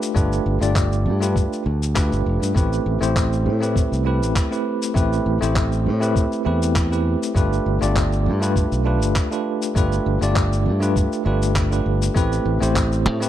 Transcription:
Already playing: tine electric piano A3 D4 F4 G4 B4
0.02 shaker
0.15 fingered electric bass G1, tine electric piano A3 D4 F4 G4 B4, kick, shaker
0.32 shaker
0.46 fingered electric bass G1
0.60 fingered electric bass G1, tine electric piano A3 D4 F4 G4 D5, shaker
0.76 kick, clap, shaker
0.92 shaker
1.06 fingered electric bass G2
1.21 tine electric piano A3 D4 F4 G4 B4, shaker
1.36 kick, shaker
1.53 shaker
1.66 fingered electric bass D2
1.83 shaker
1.95 tine electric piano A3 D4 F4 G4 B4, kick, clap, shaker
2.12 fingered electric bass G1, shaker
2.26 fingered electric bass F1
2.42 fingered electric bass G2, shaker
2.55 fingered electric bass A1, tine electric piano A3 C4 E4 G4 B4, kick, shaker
2.73 shaker
2.86 fingered electric bass A1
3.01 fingered electric bass A1, tine electric piano A3 C4 E4 G4 C5, shaker
3.16 kick, clap, shaker
3.33 shaker
3.46 fingered electric bass A2
3.60 tine electric piano A3 C4 E4 G4 B4, shaker
3.76 kick, shaker
3.92 fingered electric bass C2, shaker
4.05 tine electric piano A3 C4 E4 G4 B4
4.22 fingered electric bass A1, shaker
4.36 kick, clap, shaker
4.51 tine electric piano A3 C4 E4 G4 B4, shaker
4.82 shaker
4.94 fingered electric bass A1, tine electric piano A3 C4 E4 G4 B4, kick, shaker
5.13 shaker
5.26 fingered electric bass A1
5.41 fingered electric bass A1, tine electric piano A3 C4 E4 G4 C5, shaker
5.56 kick, clap, shaker
5.72 shaker
5.86 fingered electric bass A2
6.00 tine electric piano A3 C4 E4 G4 B4, shaker
6.16 kick, shaker
6.32 shaker
6.45 fingered electric bass E2, tine electric piano A3 C4 E4 G4 B4
6.62 shaker
6.76 kick, clap, shaker
6.90 tine electric piano A3 C4 E4 G4 B4, shaker
7.23 shaker
7.35 fingered electric bass G1, tine electric piano A3 D4 F4 G4 B4, kick, shaker
7.53 shaker
7.66 fingered electric bass G1
7.81 fingered electric bass G1, tine electric piano A3 D4 F4 G4 D5, shaker
7.96 kick, clap, shaker
8.13 shaker
8.26 fingered electric bass G2
8.41 tine electric piano A3 D4 F4 G4 B4, shaker
8.56 kick, shaker
8.72 fingered electric bass B1, shaker
8.84 tine electric piano A3 D4 F4 G4 B4
9.02 fingered electric bass G1, shaker
9.16 kick, clap, shaker
9.31 tine electric piano A3 D4 F4 G4 B4, shaker
9.62 shaker
9.75 fingered electric bass G1, tine electric piano A3 D4 F4 G4 B4, kick, shaker
9.92 shaker
10.06 fingered electric bass G1
10.21 fingered electric bass G1, tine electric piano A3 D4 F4 G4 D5, shaker
10.36 kick, clap, shaker
10.53 shaker
10.66 fingered electric bass G2
10.80 tine electric piano A3 D4 F4 G4 B4, shaker
10.96 kick, shaker
11.12 shaker
11.25 fingered electric bass G1, tine electric piano A3 D4 F4 G4 B4
11.42 shaker
11.56 kick, clap, shaker
11.70 tine electric piano A3 D4 F4 G4 B4, shaker
11.86 fingered electric bass G1
12.02 shaker
12.15 fingered electric bass A1, tine electric piano A3 C4 E4 G4 B4, kick, shaker
12.32 shaker
12.45 fingered electric bass A1
12.61 fingered electric bass A1, tine electric piano A3 C4 E4 G4 C5, shaker
12.76 kick, clap, shaker
12.92 shaker
13.06 fingered electric bass A2
13.20 tine electric piano A3 C4 E4 G4 B4, shaker

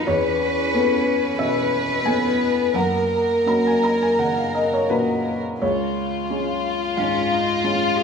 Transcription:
Already playing: felt piano A#2 F3 F#3 A#3 B4 F5
0.07 felt piano E2 C#5, cello C#4, violin section B4
0.74 felt piano B3 C#4 A4
1.39 felt piano B2 E5, violin section B4
2.05 cello B3, felt piano B3 C#4 A4 G#5
2.74 felt piano F#2 F#5, cello A#3, violin section A#4
3.46 felt piano A#3 C#4 F#4 A#5
3.67 felt piano G#5
3.84 felt piano A#5
4.02 felt piano G#5
4.18 felt piano C#3 F#5
4.38 felt piano F5
4.54 felt piano D#5
4.73 felt piano C#5
4.90 felt piano A#2 C#4 F#4 B4
5.61 felt piano C#2 C#5, violin section F4
6.30 felt piano G#3 C#4 F4
6.97 felt piano G#2 F5, cello C#4
7.32 cello D#4
7.64 felt piano G#3 C#4 F4, cello F4
7.97 cello G#4

